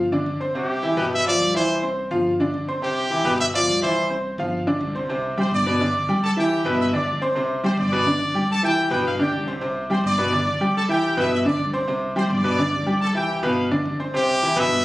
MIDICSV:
0, 0, Header, 1, 5, 480
1, 0, Start_track
1, 0, Key_signature, 0, "major"
1, 0, Tempo, 283152
1, 932, Time_signature, 4, 2, 24, 8
1, 25172, End_track
2, 0, Start_track
2, 0, Title_t, "Trumpet section"
2, 0, Program_c, 0, 61
2, 9149, Note_on_c, 0, 84, 65
2, 9152, Note_on_c, 0, 72, 86
2, 9248, Note_off_c, 0, 84, 0
2, 9250, Note_off_c, 0, 72, 0
2, 9389, Note_on_c, 0, 86, 78
2, 9392, Note_on_c, 0, 74, 102
2, 10500, Note_off_c, 0, 86, 0
2, 10501, Note_off_c, 0, 74, 0
2, 10577, Note_on_c, 0, 81, 116
2, 10586, Note_on_c, 0, 69, 91
2, 10678, Note_off_c, 0, 81, 0
2, 10685, Note_off_c, 0, 69, 0
2, 10819, Note_on_c, 0, 79, 113
2, 10829, Note_on_c, 0, 67, 92
2, 11250, Note_off_c, 0, 79, 0
2, 11255, Note_off_c, 0, 67, 0
2, 11300, Note_on_c, 0, 76, 95
2, 11312, Note_on_c, 0, 88, 74
2, 11507, Note_off_c, 0, 76, 0
2, 11513, Note_off_c, 0, 88, 0
2, 11530, Note_on_c, 0, 76, 92
2, 11541, Note_on_c, 0, 88, 74
2, 11632, Note_off_c, 0, 76, 0
2, 11641, Note_off_c, 0, 88, 0
2, 11768, Note_on_c, 0, 74, 87
2, 11782, Note_on_c, 0, 86, 68
2, 12203, Note_off_c, 0, 74, 0
2, 12211, Note_off_c, 0, 86, 0
2, 12959, Note_on_c, 0, 72, 87
2, 12971, Note_on_c, 0, 84, 70
2, 13064, Note_off_c, 0, 72, 0
2, 13072, Note_off_c, 0, 84, 0
2, 13202, Note_on_c, 0, 74, 106
2, 13213, Note_on_c, 0, 86, 83
2, 14323, Note_off_c, 0, 74, 0
2, 14328, Note_off_c, 0, 86, 0
2, 14413, Note_on_c, 0, 81, 120
2, 14418, Note_on_c, 0, 69, 92
2, 14621, Note_off_c, 0, 81, 0
2, 14623, Note_off_c, 0, 69, 0
2, 14647, Note_on_c, 0, 79, 114
2, 14658, Note_on_c, 0, 67, 88
2, 15080, Note_off_c, 0, 79, 0
2, 15086, Note_off_c, 0, 67, 0
2, 15131, Note_on_c, 0, 67, 75
2, 15132, Note_on_c, 0, 79, 100
2, 15339, Note_off_c, 0, 67, 0
2, 15340, Note_off_c, 0, 79, 0
2, 15361, Note_on_c, 0, 77, 91
2, 15464, Note_off_c, 0, 77, 0
2, 15602, Note_on_c, 0, 67, 75
2, 15605, Note_on_c, 0, 79, 93
2, 16036, Note_off_c, 0, 67, 0
2, 16038, Note_off_c, 0, 79, 0
2, 16807, Note_on_c, 0, 84, 68
2, 16811, Note_on_c, 0, 72, 85
2, 16908, Note_off_c, 0, 84, 0
2, 16911, Note_off_c, 0, 72, 0
2, 17051, Note_on_c, 0, 74, 101
2, 17053, Note_on_c, 0, 86, 76
2, 18163, Note_off_c, 0, 74, 0
2, 18165, Note_off_c, 0, 86, 0
2, 18247, Note_on_c, 0, 81, 108
2, 18254, Note_on_c, 0, 69, 92
2, 18347, Note_off_c, 0, 81, 0
2, 18352, Note_off_c, 0, 69, 0
2, 18480, Note_on_c, 0, 79, 110
2, 18493, Note_on_c, 0, 67, 86
2, 18913, Note_off_c, 0, 79, 0
2, 18920, Note_off_c, 0, 67, 0
2, 18962, Note_on_c, 0, 76, 101
2, 18971, Note_on_c, 0, 88, 78
2, 19171, Note_off_c, 0, 76, 0
2, 19176, Note_off_c, 0, 88, 0
2, 19207, Note_on_c, 0, 76, 95
2, 19215, Note_on_c, 0, 88, 74
2, 19307, Note_off_c, 0, 76, 0
2, 19313, Note_off_c, 0, 88, 0
2, 19439, Note_on_c, 0, 74, 92
2, 19456, Note_on_c, 0, 86, 67
2, 19872, Note_off_c, 0, 74, 0
2, 19881, Note_off_c, 0, 86, 0
2, 20633, Note_on_c, 0, 72, 82
2, 20649, Note_on_c, 0, 84, 68
2, 20736, Note_off_c, 0, 72, 0
2, 20748, Note_off_c, 0, 84, 0
2, 20867, Note_on_c, 0, 74, 97
2, 20883, Note_on_c, 0, 86, 80
2, 21990, Note_off_c, 0, 74, 0
2, 21998, Note_off_c, 0, 86, 0
2, 22061, Note_on_c, 0, 81, 119
2, 22078, Note_on_c, 0, 69, 87
2, 22166, Note_off_c, 0, 81, 0
2, 22180, Note_off_c, 0, 69, 0
2, 22296, Note_on_c, 0, 79, 113
2, 22313, Note_on_c, 0, 67, 85
2, 22739, Note_off_c, 0, 79, 0
2, 22748, Note_off_c, 0, 67, 0
2, 22783, Note_on_c, 0, 77, 92
2, 22799, Note_off_c, 0, 77, 0
2, 22799, Note_on_c, 0, 77, 78
2, 23232, Note_off_c, 0, 77, 0
2, 25172, End_track
3, 0, Start_track
3, 0, Title_t, "Trumpet"
3, 0, Program_c, 1, 56
3, 957, Note_on_c, 1, 67, 82
3, 1842, Note_off_c, 1, 67, 0
3, 1926, Note_on_c, 1, 76, 107
3, 2136, Note_off_c, 1, 76, 0
3, 2167, Note_on_c, 1, 74, 104
3, 2601, Note_off_c, 1, 74, 0
3, 2652, Note_on_c, 1, 72, 90
3, 3084, Note_off_c, 1, 72, 0
3, 4802, Note_on_c, 1, 67, 90
3, 5688, Note_off_c, 1, 67, 0
3, 5769, Note_on_c, 1, 76, 113
3, 5872, Note_off_c, 1, 76, 0
3, 6020, Note_on_c, 1, 74, 104
3, 6452, Note_off_c, 1, 74, 0
3, 6491, Note_on_c, 1, 72, 87
3, 6927, Note_off_c, 1, 72, 0
3, 23999, Note_on_c, 1, 67, 96
3, 24743, Note_on_c, 1, 76, 110
3, 24769, Note_off_c, 1, 67, 0
3, 25172, Note_off_c, 1, 76, 0
3, 25172, End_track
4, 0, Start_track
4, 0, Title_t, "Grand piano"
4, 0, Program_c, 2, 0
4, 203, Note_on_c, 2, 50, 78
4, 208, Note_on_c, 2, 62, 75
4, 212, Note_on_c, 2, 74, 74
4, 601, Note_off_c, 2, 50, 0
4, 604, Note_off_c, 2, 62, 0
4, 606, Note_off_c, 2, 74, 0
4, 685, Note_on_c, 2, 60, 74
4, 690, Note_on_c, 2, 72, 75
4, 695, Note_on_c, 2, 84, 73
4, 885, Note_off_c, 2, 60, 0
4, 888, Note_off_c, 2, 72, 0
4, 891, Note_off_c, 2, 84, 0
4, 929, Note_on_c, 2, 48, 78
4, 932, Note_on_c, 2, 60, 78
4, 938, Note_on_c, 2, 72, 78
4, 1325, Note_off_c, 2, 48, 0
4, 1327, Note_off_c, 2, 60, 0
4, 1331, Note_off_c, 2, 72, 0
4, 1402, Note_on_c, 2, 52, 74
4, 1407, Note_on_c, 2, 64, 71
4, 1410, Note_on_c, 2, 76, 74
4, 1605, Note_off_c, 2, 52, 0
4, 1607, Note_off_c, 2, 64, 0
4, 1609, Note_off_c, 2, 76, 0
4, 1642, Note_on_c, 2, 47, 82
4, 1647, Note_on_c, 2, 59, 82
4, 1652, Note_on_c, 2, 71, 85
4, 2043, Note_off_c, 2, 47, 0
4, 2045, Note_off_c, 2, 59, 0
4, 2048, Note_off_c, 2, 71, 0
4, 2133, Note_on_c, 2, 53, 78
4, 2138, Note_on_c, 2, 65, 72
4, 2146, Note_on_c, 2, 77, 78
4, 2529, Note_off_c, 2, 53, 0
4, 2532, Note_off_c, 2, 65, 0
4, 2537, Note_off_c, 2, 77, 0
4, 2614, Note_on_c, 2, 52, 75
4, 2617, Note_on_c, 2, 64, 78
4, 2625, Note_on_c, 2, 76, 75
4, 3011, Note_off_c, 2, 52, 0
4, 3013, Note_off_c, 2, 64, 0
4, 3017, Note_off_c, 2, 76, 0
4, 3095, Note_on_c, 2, 60, 77
4, 3100, Note_on_c, 2, 72, 76
4, 3103, Note_on_c, 2, 84, 69
4, 3492, Note_off_c, 2, 60, 0
4, 3495, Note_off_c, 2, 72, 0
4, 3497, Note_off_c, 2, 84, 0
4, 3574, Note_on_c, 2, 53, 77
4, 3576, Note_on_c, 2, 65, 78
4, 3581, Note_on_c, 2, 77, 78
4, 3972, Note_off_c, 2, 53, 0
4, 3973, Note_off_c, 2, 65, 0
4, 3976, Note_off_c, 2, 77, 0
4, 4064, Note_on_c, 2, 50, 78
4, 4067, Note_on_c, 2, 62, 75
4, 4077, Note_on_c, 2, 74, 76
4, 4458, Note_off_c, 2, 50, 0
4, 4460, Note_off_c, 2, 62, 0
4, 4466, Note_off_c, 2, 74, 0
4, 4547, Note_on_c, 2, 60, 72
4, 4553, Note_on_c, 2, 72, 77
4, 4553, Note_on_c, 2, 84, 77
4, 4743, Note_off_c, 2, 60, 0
4, 4746, Note_off_c, 2, 84, 0
4, 4747, Note_off_c, 2, 72, 0
4, 4780, Note_on_c, 2, 48, 75
4, 4786, Note_on_c, 2, 60, 81
4, 4792, Note_on_c, 2, 72, 76
4, 5176, Note_off_c, 2, 48, 0
4, 5180, Note_off_c, 2, 60, 0
4, 5184, Note_off_c, 2, 72, 0
4, 5260, Note_on_c, 2, 52, 75
4, 5265, Note_on_c, 2, 64, 70
4, 5271, Note_on_c, 2, 76, 74
4, 5460, Note_off_c, 2, 52, 0
4, 5463, Note_off_c, 2, 64, 0
4, 5466, Note_off_c, 2, 76, 0
4, 5507, Note_on_c, 2, 47, 91
4, 5508, Note_on_c, 2, 59, 81
4, 5513, Note_on_c, 2, 71, 87
4, 5901, Note_off_c, 2, 47, 0
4, 5901, Note_off_c, 2, 59, 0
4, 5904, Note_off_c, 2, 71, 0
4, 5990, Note_on_c, 2, 53, 73
4, 5995, Note_on_c, 2, 65, 76
4, 6001, Note_on_c, 2, 77, 75
4, 6383, Note_off_c, 2, 53, 0
4, 6386, Note_off_c, 2, 65, 0
4, 6389, Note_off_c, 2, 77, 0
4, 6468, Note_on_c, 2, 52, 73
4, 6472, Note_on_c, 2, 64, 75
4, 6481, Note_on_c, 2, 76, 73
4, 6862, Note_off_c, 2, 52, 0
4, 6865, Note_off_c, 2, 64, 0
4, 6869, Note_off_c, 2, 76, 0
4, 6949, Note_on_c, 2, 60, 71
4, 6955, Note_on_c, 2, 72, 72
4, 6960, Note_on_c, 2, 84, 70
4, 7342, Note_off_c, 2, 60, 0
4, 7346, Note_off_c, 2, 72, 0
4, 7349, Note_off_c, 2, 84, 0
4, 7438, Note_on_c, 2, 53, 77
4, 7447, Note_on_c, 2, 65, 74
4, 7452, Note_on_c, 2, 77, 78
4, 7828, Note_off_c, 2, 53, 0
4, 7833, Note_off_c, 2, 65, 0
4, 7836, Note_off_c, 2, 77, 0
4, 7915, Note_on_c, 2, 50, 72
4, 7917, Note_on_c, 2, 62, 77
4, 7922, Note_on_c, 2, 74, 72
4, 8306, Note_off_c, 2, 50, 0
4, 8308, Note_off_c, 2, 62, 0
4, 8310, Note_off_c, 2, 74, 0
4, 8389, Note_on_c, 2, 60, 71
4, 8396, Note_on_c, 2, 72, 73
4, 8401, Note_on_c, 2, 84, 71
4, 8586, Note_off_c, 2, 60, 0
4, 8590, Note_off_c, 2, 72, 0
4, 8593, Note_off_c, 2, 84, 0
4, 8632, Note_on_c, 2, 48, 82
4, 8639, Note_on_c, 2, 60, 81
4, 8642, Note_on_c, 2, 72, 78
4, 9024, Note_off_c, 2, 48, 0
4, 9028, Note_off_c, 2, 60, 0
4, 9030, Note_off_c, 2, 72, 0
4, 9110, Note_on_c, 2, 55, 79
4, 9115, Note_on_c, 2, 67, 77
4, 9116, Note_on_c, 2, 79, 79
4, 9503, Note_off_c, 2, 55, 0
4, 9505, Note_off_c, 2, 67, 0
4, 9507, Note_off_c, 2, 79, 0
4, 9601, Note_on_c, 2, 47, 85
4, 9603, Note_on_c, 2, 59, 88
4, 9612, Note_on_c, 2, 71, 81
4, 9792, Note_off_c, 2, 47, 0
4, 9794, Note_off_c, 2, 59, 0
4, 9799, Note_off_c, 2, 71, 0
4, 9844, Note_on_c, 2, 50, 78
4, 9845, Note_on_c, 2, 62, 81
4, 9854, Note_on_c, 2, 74, 80
4, 10230, Note_off_c, 2, 50, 0
4, 10231, Note_off_c, 2, 62, 0
4, 10236, Note_off_c, 2, 74, 0
4, 10318, Note_on_c, 2, 55, 79
4, 10321, Note_on_c, 2, 67, 77
4, 10328, Note_on_c, 2, 79, 82
4, 10707, Note_off_c, 2, 55, 0
4, 10709, Note_off_c, 2, 67, 0
4, 10713, Note_off_c, 2, 79, 0
4, 10791, Note_on_c, 2, 52, 79
4, 10799, Note_on_c, 2, 64, 76
4, 10804, Note_on_c, 2, 76, 76
4, 11182, Note_off_c, 2, 52, 0
4, 11187, Note_off_c, 2, 64, 0
4, 11190, Note_off_c, 2, 76, 0
4, 11277, Note_on_c, 2, 47, 86
4, 11279, Note_on_c, 2, 59, 89
4, 11288, Note_on_c, 2, 71, 92
4, 11665, Note_off_c, 2, 47, 0
4, 11666, Note_off_c, 2, 59, 0
4, 11672, Note_off_c, 2, 71, 0
4, 11747, Note_on_c, 2, 50, 82
4, 11754, Note_on_c, 2, 62, 80
4, 11760, Note_on_c, 2, 74, 81
4, 12139, Note_off_c, 2, 50, 0
4, 12143, Note_off_c, 2, 62, 0
4, 12147, Note_off_c, 2, 74, 0
4, 12232, Note_on_c, 2, 60, 83
4, 12234, Note_on_c, 2, 72, 78
4, 12244, Note_on_c, 2, 84, 84
4, 12425, Note_off_c, 2, 60, 0
4, 12427, Note_off_c, 2, 72, 0
4, 12432, Note_off_c, 2, 84, 0
4, 12466, Note_on_c, 2, 48, 81
4, 12474, Note_on_c, 2, 60, 82
4, 12479, Note_on_c, 2, 72, 83
4, 12858, Note_off_c, 2, 48, 0
4, 12863, Note_off_c, 2, 60, 0
4, 12866, Note_off_c, 2, 72, 0
4, 12944, Note_on_c, 2, 55, 76
4, 12953, Note_on_c, 2, 67, 79
4, 12959, Note_on_c, 2, 79, 78
4, 13336, Note_off_c, 2, 55, 0
4, 13342, Note_off_c, 2, 67, 0
4, 13345, Note_off_c, 2, 79, 0
4, 13427, Note_on_c, 2, 47, 86
4, 13433, Note_on_c, 2, 59, 85
4, 13439, Note_on_c, 2, 71, 87
4, 13621, Note_off_c, 2, 47, 0
4, 13625, Note_off_c, 2, 59, 0
4, 13629, Note_off_c, 2, 71, 0
4, 13668, Note_on_c, 2, 50, 79
4, 13672, Note_on_c, 2, 62, 84
4, 13677, Note_on_c, 2, 74, 77
4, 14058, Note_off_c, 2, 50, 0
4, 14061, Note_off_c, 2, 62, 0
4, 14064, Note_off_c, 2, 74, 0
4, 14149, Note_on_c, 2, 55, 78
4, 14156, Note_on_c, 2, 67, 75
4, 14159, Note_on_c, 2, 79, 84
4, 14539, Note_off_c, 2, 55, 0
4, 14543, Note_off_c, 2, 67, 0
4, 14544, Note_off_c, 2, 79, 0
4, 14628, Note_on_c, 2, 52, 77
4, 14635, Note_on_c, 2, 64, 77
4, 14639, Note_on_c, 2, 76, 79
4, 15017, Note_off_c, 2, 52, 0
4, 15022, Note_off_c, 2, 64, 0
4, 15024, Note_off_c, 2, 76, 0
4, 15097, Note_on_c, 2, 47, 92
4, 15103, Note_on_c, 2, 59, 93
4, 15109, Note_on_c, 2, 71, 95
4, 15491, Note_off_c, 2, 47, 0
4, 15494, Note_off_c, 2, 59, 0
4, 15498, Note_off_c, 2, 71, 0
4, 15583, Note_on_c, 2, 50, 76
4, 15586, Note_on_c, 2, 62, 79
4, 15593, Note_on_c, 2, 74, 77
4, 15974, Note_off_c, 2, 50, 0
4, 15976, Note_off_c, 2, 62, 0
4, 15980, Note_off_c, 2, 74, 0
4, 16056, Note_on_c, 2, 60, 75
4, 16063, Note_on_c, 2, 72, 78
4, 16067, Note_on_c, 2, 84, 73
4, 16253, Note_off_c, 2, 60, 0
4, 16257, Note_off_c, 2, 72, 0
4, 16259, Note_off_c, 2, 84, 0
4, 16287, Note_on_c, 2, 48, 77
4, 16293, Note_on_c, 2, 60, 84
4, 16300, Note_on_c, 2, 72, 80
4, 16684, Note_off_c, 2, 48, 0
4, 16688, Note_off_c, 2, 60, 0
4, 16692, Note_off_c, 2, 72, 0
4, 16780, Note_on_c, 2, 55, 76
4, 16788, Note_on_c, 2, 67, 75
4, 16795, Note_on_c, 2, 79, 78
4, 17171, Note_off_c, 2, 55, 0
4, 17176, Note_off_c, 2, 67, 0
4, 17180, Note_off_c, 2, 79, 0
4, 17257, Note_on_c, 2, 47, 88
4, 17261, Note_on_c, 2, 59, 88
4, 17265, Note_on_c, 2, 71, 83
4, 17453, Note_off_c, 2, 47, 0
4, 17455, Note_off_c, 2, 59, 0
4, 17458, Note_off_c, 2, 71, 0
4, 17500, Note_on_c, 2, 50, 77
4, 17507, Note_on_c, 2, 62, 77
4, 17508, Note_on_c, 2, 74, 78
4, 17891, Note_off_c, 2, 50, 0
4, 17895, Note_off_c, 2, 62, 0
4, 17895, Note_off_c, 2, 74, 0
4, 17981, Note_on_c, 2, 55, 80
4, 17985, Note_on_c, 2, 67, 81
4, 17995, Note_on_c, 2, 79, 83
4, 18371, Note_off_c, 2, 55, 0
4, 18374, Note_off_c, 2, 67, 0
4, 18379, Note_off_c, 2, 79, 0
4, 18455, Note_on_c, 2, 52, 78
4, 18463, Note_on_c, 2, 64, 76
4, 18467, Note_on_c, 2, 76, 73
4, 18847, Note_off_c, 2, 52, 0
4, 18852, Note_off_c, 2, 64, 0
4, 18854, Note_off_c, 2, 76, 0
4, 18936, Note_on_c, 2, 47, 92
4, 18938, Note_on_c, 2, 59, 86
4, 18941, Note_on_c, 2, 71, 95
4, 19327, Note_off_c, 2, 47, 0
4, 19328, Note_off_c, 2, 59, 0
4, 19331, Note_off_c, 2, 71, 0
4, 19413, Note_on_c, 2, 50, 76
4, 19423, Note_on_c, 2, 62, 75
4, 19423, Note_on_c, 2, 74, 79
4, 19805, Note_off_c, 2, 50, 0
4, 19811, Note_off_c, 2, 62, 0
4, 19811, Note_off_c, 2, 74, 0
4, 19890, Note_on_c, 2, 60, 85
4, 19894, Note_on_c, 2, 72, 80
4, 19900, Note_on_c, 2, 84, 84
4, 20087, Note_off_c, 2, 60, 0
4, 20089, Note_off_c, 2, 72, 0
4, 20093, Note_off_c, 2, 84, 0
4, 20131, Note_on_c, 2, 48, 84
4, 20132, Note_on_c, 2, 60, 81
4, 20140, Note_on_c, 2, 72, 82
4, 20524, Note_off_c, 2, 48, 0
4, 20525, Note_off_c, 2, 60, 0
4, 20529, Note_off_c, 2, 72, 0
4, 20611, Note_on_c, 2, 55, 81
4, 20614, Note_on_c, 2, 67, 81
4, 20620, Note_on_c, 2, 79, 77
4, 21004, Note_off_c, 2, 55, 0
4, 21006, Note_off_c, 2, 67, 0
4, 21009, Note_off_c, 2, 79, 0
4, 21086, Note_on_c, 2, 47, 83
4, 21093, Note_on_c, 2, 59, 82
4, 21095, Note_on_c, 2, 71, 85
4, 21284, Note_off_c, 2, 47, 0
4, 21288, Note_off_c, 2, 59, 0
4, 21290, Note_off_c, 2, 71, 0
4, 21332, Note_on_c, 2, 50, 81
4, 21337, Note_on_c, 2, 62, 77
4, 21342, Note_on_c, 2, 74, 80
4, 21724, Note_off_c, 2, 50, 0
4, 21727, Note_off_c, 2, 62, 0
4, 21730, Note_off_c, 2, 74, 0
4, 21804, Note_on_c, 2, 55, 77
4, 21810, Note_on_c, 2, 67, 83
4, 21813, Note_on_c, 2, 79, 76
4, 22200, Note_off_c, 2, 55, 0
4, 22203, Note_off_c, 2, 67, 0
4, 22205, Note_off_c, 2, 79, 0
4, 22279, Note_on_c, 2, 52, 73
4, 22284, Note_on_c, 2, 64, 73
4, 22293, Note_on_c, 2, 76, 73
4, 22677, Note_off_c, 2, 52, 0
4, 22680, Note_off_c, 2, 64, 0
4, 22685, Note_off_c, 2, 76, 0
4, 22758, Note_on_c, 2, 47, 88
4, 22765, Note_on_c, 2, 59, 88
4, 22770, Note_on_c, 2, 71, 92
4, 23157, Note_off_c, 2, 47, 0
4, 23161, Note_off_c, 2, 59, 0
4, 23163, Note_off_c, 2, 71, 0
4, 23245, Note_on_c, 2, 62, 75
4, 23246, Note_on_c, 2, 50, 78
4, 23251, Note_on_c, 2, 74, 78
4, 23641, Note_off_c, 2, 50, 0
4, 23641, Note_off_c, 2, 62, 0
4, 23644, Note_off_c, 2, 74, 0
4, 23725, Note_on_c, 2, 60, 72
4, 23729, Note_on_c, 2, 72, 75
4, 23736, Note_on_c, 2, 84, 76
4, 23924, Note_off_c, 2, 60, 0
4, 23927, Note_off_c, 2, 72, 0
4, 23930, Note_off_c, 2, 84, 0
4, 23965, Note_on_c, 2, 48, 81
4, 23970, Note_on_c, 2, 60, 79
4, 23975, Note_on_c, 2, 72, 74
4, 24361, Note_off_c, 2, 48, 0
4, 24364, Note_off_c, 2, 60, 0
4, 24368, Note_off_c, 2, 72, 0
4, 24452, Note_on_c, 2, 52, 73
4, 24458, Note_on_c, 2, 64, 75
4, 24467, Note_on_c, 2, 76, 74
4, 24649, Note_off_c, 2, 52, 0
4, 24652, Note_off_c, 2, 64, 0
4, 24657, Note_off_c, 2, 76, 0
4, 24687, Note_on_c, 2, 47, 89
4, 24690, Note_on_c, 2, 59, 85
4, 24697, Note_on_c, 2, 71, 88
4, 25084, Note_off_c, 2, 47, 0
4, 25085, Note_off_c, 2, 59, 0
4, 25089, Note_off_c, 2, 71, 0
4, 25172, End_track
5, 0, Start_track
5, 0, Title_t, "Upright bass"
5, 0, Program_c, 3, 32
5, 0, Note_on_c, 3, 31, 93
5, 395, Note_off_c, 3, 31, 0
5, 443, Note_on_c, 3, 36, 90
5, 1560, Note_off_c, 3, 36, 0
5, 1644, Note_on_c, 3, 31, 90
5, 2321, Note_off_c, 3, 31, 0
5, 2375, Note_on_c, 3, 36, 91
5, 3488, Note_off_c, 3, 36, 0
5, 3573, Note_on_c, 3, 31, 92
5, 4248, Note_off_c, 3, 31, 0
5, 4301, Note_on_c, 3, 36, 93
5, 5413, Note_off_c, 3, 36, 0
5, 5500, Note_on_c, 3, 31, 91
5, 6174, Note_off_c, 3, 31, 0
5, 6229, Note_on_c, 3, 36, 93
5, 7338, Note_off_c, 3, 36, 0
5, 7427, Note_on_c, 3, 31, 94
5, 8098, Note_off_c, 3, 31, 0
5, 8148, Note_on_c, 3, 36, 96
5, 9256, Note_off_c, 3, 36, 0
5, 9346, Note_on_c, 3, 31, 97
5, 10016, Note_off_c, 3, 31, 0
5, 10068, Note_on_c, 3, 36, 93
5, 11175, Note_off_c, 3, 36, 0
5, 11263, Note_on_c, 3, 31, 105
5, 11710, Note_off_c, 3, 31, 0
5, 11752, Note_on_c, 3, 35, 75
5, 11972, Note_off_c, 3, 35, 0
5, 11986, Note_on_c, 3, 36, 96
5, 13092, Note_off_c, 3, 36, 0
5, 13175, Note_on_c, 3, 31, 100
5, 13847, Note_off_c, 3, 31, 0
5, 13893, Note_on_c, 3, 36, 93
5, 15003, Note_off_c, 3, 36, 0
5, 15091, Note_on_c, 3, 31, 100
5, 15540, Note_off_c, 3, 31, 0
5, 15569, Note_on_c, 3, 35, 70
5, 15796, Note_off_c, 3, 35, 0
5, 15807, Note_on_c, 3, 36, 99
5, 16919, Note_off_c, 3, 36, 0
5, 17016, Note_on_c, 3, 31, 94
5, 17684, Note_off_c, 3, 31, 0
5, 17738, Note_on_c, 3, 36, 99
5, 18842, Note_off_c, 3, 36, 0
5, 18934, Note_on_c, 3, 31, 97
5, 19379, Note_off_c, 3, 31, 0
5, 19422, Note_on_c, 3, 35, 79
5, 19640, Note_off_c, 3, 35, 0
5, 19655, Note_on_c, 3, 36, 99
5, 20760, Note_off_c, 3, 36, 0
5, 20852, Note_on_c, 3, 31, 102
5, 21520, Note_off_c, 3, 31, 0
5, 21570, Note_on_c, 3, 36, 99
5, 22678, Note_off_c, 3, 36, 0
5, 22766, Note_on_c, 3, 31, 92
5, 23214, Note_off_c, 3, 31, 0
5, 23247, Note_on_c, 3, 35, 74
5, 23472, Note_off_c, 3, 35, 0
5, 23486, Note_on_c, 3, 36, 91
5, 24598, Note_off_c, 3, 36, 0
5, 24687, Note_on_c, 3, 31, 94
5, 25172, Note_off_c, 3, 31, 0
5, 25172, End_track
0, 0, End_of_file